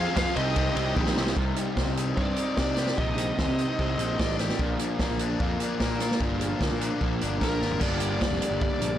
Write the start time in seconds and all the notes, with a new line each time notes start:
Already playing: F3 C4 F4 G#4 C5 F5 G#5 D#6
0.15 F2 F3 C4 F4 G#4 F5, kick, snare, ride
0.35 C2 C3 G3 C4 D#4 G4 D#5 G5 A#5 D#6, ride
0.55 C3 G3 C4 D#4 G4, kick, ride
0.76 C2 C3 G3 C4 D#4 G4, ride
0.96 A#1 C3 G3 C4 D#4 G4, kick, high tom
1.06 snare
1.16 C2 C3 G3 C4 D#4 G4, snare
1.26 snare
1.35 C2 C3 G3 C4 D#4, kick
1.56 G3, closed hi-hat
1.76 C2 C4, kick, snare
1.87 C2
1.97 D#4, closed hi-hat
2.15 G2 C3 G3 C4 D#4 D5, kick
2.36 D#4, closed hi-hat
2.57 C3 D5, kick, snare
2.77 G4, snare, closed hi-hat
2.87 snare
2.97 A#1 C3 G3 C4 D#4 D#5, kick
3.18 G3, closed hi-hat
3.39 D#2 C4, kick, snare
3.48 C3
3.58 D#4, closed hi-hat
3.78 C2 C3 G3 C4 D#4, kick
3.98 A#1 D#4, closed hi-hat
4.20 A1 D5, kick, snare
4.39 G4, snare, closed hi-hat
4.49 snare
4.59 A#1 A#2 D3 F3 A#3 D4, kick
4.79 F3, closed hi-hat
4.99 A#1 A#3, kick, snare
5.11 A#1
5.19 D4, closed hi-hat
5.40 F2 A#2 D3 F3 A#3 D4, kick
5.60 D4, closed hi-hat
5.80 A#2 A#4, kick, snare
6.00 F4, snare, closed hi-hat
6.11 snare
6.20 G1 A#2 D3 F3 A#3 D4, kick
6.41 F3, closed hi-hat
6.60 D2 A#3, kick, snare
6.72 A#2
6.80 D4, closed hi-hat
7.00 A#1 A#2 D3 F3 A#3 D4, kick
7.21 G1 D4, closed hi-hat
7.41 A#1 A#4, kick, snare
7.61 G#1 F4, snare
7.71 floor tom
7.79 G1 G2 D3 G3 A#3 D4 D5, kick, crash
7.83 G4
8.00 closed hi-hat
8.21 kick, snare
8.31 F1
8.42 closed hi-hat
8.51 G1
8.61 D5, kick
8.80 A#1, closed hi-hat